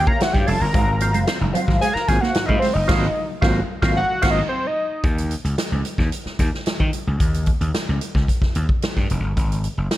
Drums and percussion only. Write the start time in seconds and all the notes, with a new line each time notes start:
0.07 kick
0.20 snare, closed hi-hat
0.34 kick, snare
0.47 open hi-hat
0.74 kick, closed hi-hat
1.00 closed hi-hat
1.14 closed hi-hat
1.27 snare, closed hi-hat
1.55 closed hi-hat
1.68 kick, snare
1.82 closed hi-hat
1.96 snare
2.08 kick, snare, closed hi-hat
2.23 snare
2.35 snare, closed hi-hat
2.49 kick
2.62 snare, open hi-hat
2.89 kick, snare, crash
3.42 kick, snare
3.82 kick, snare
4.22 kick, snare, crash
5.03 kick, closed hi-hat
5.18 closed hi-hat
5.31 closed hi-hat
5.45 closed hi-hat
5.58 snare, closed hi-hat
5.85 closed hi-hat
5.98 kick, snare
6.12 closed hi-hat
6.26 snare
6.39 kick, snare, closed hi-hat
6.54 snare
6.66 snare, closed hi-hat
6.80 kick
6.93 closed hi-hat
7.20 kick, closed hi-hat
7.34 closed hi-hat
7.46 kick, closed hi-hat
7.61 closed hi-hat
7.75 snare, closed hi-hat
8.01 closed hi-hat
8.15 kick, snare
8.28 kick, closed hi-hat
8.42 kick, snare
8.55 closed hi-hat
8.69 kick
8.82 snare, closed hi-hat
8.96 kick, snare
9.10 closed hi-hat
9.37 kick, closed hi-hat
9.52 closed hi-hat
9.64 closed hi-hat
9.91 snare, closed hi-hat